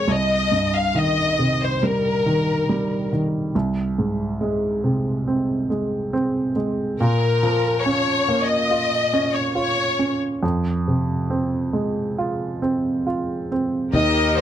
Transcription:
0.08 C2 D#5
0.52 G2
0.75 F5
0.95 D#3 D#5
1.39 C3
1.63 C5
1.83 G3 A#4
2.26 D#3
2.69 G3
3.13 D#3
3.55 C2
3.98 G#2
4.41 G#3
4.84 C3
5.27 C4
5.70 G#3
6.13 C4
6.56 G#3
7.00 A#2 A#4
7.43 F3
7.82 C#4 C#5
8.28 A#3
8.45 D#5
8.71 F4
9.13 C#4
9.34 C#5
9.55 F4 C#5
9.99 C#4
10.43 F2
10.88 C3
11.30 C4
11.73 G#3
12.18 F4
12.62 C4
13.07 F4
13.52 C4
13.93 D#2 D#3 D#4 G4 A#4 D#5
14.38 A#3 C5

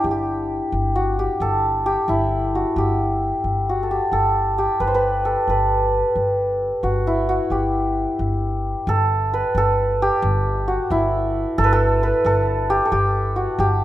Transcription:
Already playing: D4 E4
0.04 G1 G4
0.11 G4
0.72 G1
0.95 F#4
1.19 G4
1.40 G1 A4
1.86 G4
2.08 G1 E4
2.55 F#4
2.76 G1 G4
3.44 G1
3.69 F#4
3.83 A4
3.91 G4
4.12 G1 A4
4.58 G4
4.80 G1 B4
4.87 C5
4.94 B4
5.25 A4
5.47 G1 B4
6.16 G1
6.83 G1 F#4
7.07 E4
7.29 F#4
7.50 G1 G4
8.19 G1
8.87 G1 A4
9.34 B4
9.55 G1 A4
10.02 G4
10.22 G1
10.68 F#4
10.90 G1 E4
11.58 G1 A4
11.64 B4
11.73 A4
12.03 B4
12.25 G1 A4
12.70 G4
12.85 A4
12.92 G1 G4
13.36 F#4
13.59 G1 G4

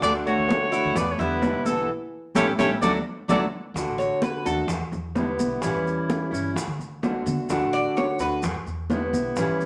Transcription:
Already playing: D4
0.01 D2 D3 A3 D4 F#4 D5, high bongo, high conga, maracas
0.26 A3 F#4 C#5, high bongo, high conga, maracas
0.38 D2
0.48 D3 A3 D4 F#4, high bongo, high conga, maracas
0.71 A3 D4 E4 F#4, high bongo, high conga, maracas
0.84 D2
0.95 E2 B3 B4 D5, muted steel-string acoustic guitar stroke, high bongo, high conga, low conga, maracas
1.12 A3 C#5
1.18 E2 D3 G3 B3 E4 B4, high conga, maracas
1.42 D3 G3 B3 E4, high bongo, low bongo, high conga, maracas
1.53 B1
1.66 E3 A4, high bongo, high conga, maracas
2.35 A1 G3 A3 C#4 E4 G4 A4 C#5, low bongo, high conga, maracas
2.58 A1 G3 A3 C#4 E4 G4 A4 C#5, low bongo, high conga, maracas
2.82 D2 F#3 A3 D4 F#4 A4 D5, low bongo, high conga, maracas
3.28 D2 F#3 A3 D4 F#4 A4 D5, low bongo, high conga, maracas
3.74 D2 D3 A3 D4 F#4, high bongo, high conga, maracas
3.86 A1
3.98 C#5, high bongo, high conga, maracas
4.22 B4, high bongo, high conga, maracas
4.45 D#2 A3 D4 F#4 A4, high bongo, high conga, maracas
4.68 E2, muted steel-string acoustic guitar stroke, high bongo, high conga, low conga, maracas
4.80 E3
4.92 E2, high conga, low conga, maracas
5.15 D3 G3 B3 E4, high bongo, low bongo, high conga, maracas
5.39 B1, high bongo, high conga, maracas
5.61 A1 E3 G3 C#4 E4, high bongo, maracas
5.74 E2
5.85 high bongo, high conga, maracas
6.10 high bongo, high conga, maracas
6.31 G1 G3 C#4 E4, high bongo, high conga, maracas
6.55 D2, muted steel-string acoustic guitar stroke, high bongo, high conga, maracas
6.67 D3
6.79 D2, high conga, maracas
7.02 D3 A3 D4 F#4, high bongo, low bongo, high conga, maracas
7.26 D3, high bongo, high conga, maracas
7.49 D2 D3 A3 D4 F#4, high bongo, high conga, maracas
7.62 A1
7.73 D5, high bongo, high conga, maracas
7.96 C#5, high bongo, high conga, maracas
8.19 D2 A3 D4 F#4 B4, high bongo, high conga, maracas
8.43 E2, muted steel-string acoustic guitar stroke, high bongo, high conga, low conga, maracas
8.54 E3
8.66 E2, high conga, maracas
8.90 D3 G3 B3 E4, high bongo, low bongo, high conga, maracas
9.13 B1, high bongo, high conga, maracas
9.36 A1 E3 G3 C#4 E4, high bongo, high conga, maracas
9.48 E2
9.61 high bongo, high conga, maracas

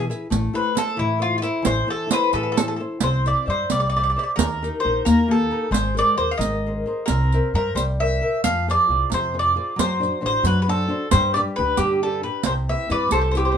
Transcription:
0.10 E4 G#4 B4, riq
0.30 A1 A3, riq
0.53 E4 A4 B4 C5
0.75 E4 A4 C5, riq
0.97 A2 E3 E4
1.19 E4 F4 A4 C5
1.38 F4
1.42 E4 A4 C5, riq
1.62 A1 E3 C5, riq
1.87 E4 A4 C5
2.07 E4 A4 C5, riq
2.11 B4 C5
2.33 A2 E3 A4 B4, riq
2.43 A4
2.52 E4 A4
2.56 A4 C5, riq
2.68 A4
2.76 E4 A4
2.81 C5
3.00 C2 C4 C5, riq
3.26 C5 D5 E5, riq
3.46 G2 C5 D5 E5
3.50 C5
3.69 C2 G3 D5, riq
3.80 D5
3.90 D5
3.96 C5 D5 E5
4.04 D5
4.10 D5
4.16 C5 D5 E5
4.23 D5
4.36 D#2 D#3 A#4, riq
4.62 D#4 G4 A#4, riq
4.80 C5
4.84 A#1 D#4 G4 A#4
5.05 D#2 A#3 A#4, riq
5.28 A#3 D#4 G4 A4
5.51 D#4 G4 A#4
5.71 G#1 G#3 C5, riq
5.95 G#4 A#4 C5 D5, riq
6.17 D#2 G#4 A#4 C5
6.31 F5
6.37 G#1 D#3 D#5, riq
6.66 G#4 A#4 C5
6.86 G#4 A#4 C5
7.06 C2 C4 A#4, riq
7.32 A#4 C5 E5, riq
7.54 G2 A#4 C5 E5
7.75 C2 G3 C5, riq
8.00 A#4 C5 E5
8.21 A#4 C5 E5
8.44 F2 F3 F5, riq
8.68 F4 G#4 C5 D5, riq
8.89 C2 F4 G#4 C5
9.10 F2 C3, riq
9.14 C5
9.34 F4 G#4 C5
9.39 D5
9.55 F4 G#4 C5
9.76 F#2 F#3 C5, riq
10.00 D4 F#4 C5, riq
10.21 A1 D4 F#4 C5
10.26 C5
10.43 F#2 F#3 B4, riq
10.62 B4
10.68 D4 F#4 A4 C5
10.88 D4 F#4 C5
11.11 G2 G3 C5, riq
11.34 D4 G4 B4 D5, riq
11.56 D2 D4 G4 B4
11.77 G2 D3 G4, riq
12.02 D4 G4 A4 B4
12.23 D4 G4 B4
12.43 C2 C3 C5, riq
12.69 C4 E4 B4 E5
12.89 G2 C4 E4 B4 D5, riq
13.09 C2 G3 A4, riq
13.13 C5
13.21 C5
13.31 C4 E4 B4 C5, riq
13.37 G4 C5
13.45 C5
13.52 C4 C5

